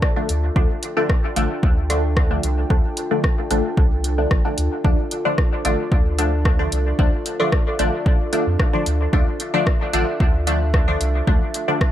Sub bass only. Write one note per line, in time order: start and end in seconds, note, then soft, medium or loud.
0.29 0.50 D2 medium
0.56 0.67 D2 loud
1.36 1.47 A1 medium
1.63 2.39 D2 medium
2.44 2.65 C2 medium
2.70 2.81 D2 loud
3.51 3.61 A1 medium
3.77 4.26 C2 medium
4.31 4.42 A1 loud
4.58 4.69 D2 loud
4.84 4.95 D2 loud
5.65 5.76 A1 medium
5.92 6.67 D2 medium
6.72 6.93 C2 medium
6.99 7.10 D2 loud
7.79 7.90 A1 medium
8.47 8.57 F2 medium
8.86 9.07 D2 medium
9.13 9.24 D2 loud
9.93 10.04 A1 medium
10.20 10.96 D2 medium
11.00 11.22 C2 medium
11.27 11.38 D2 loud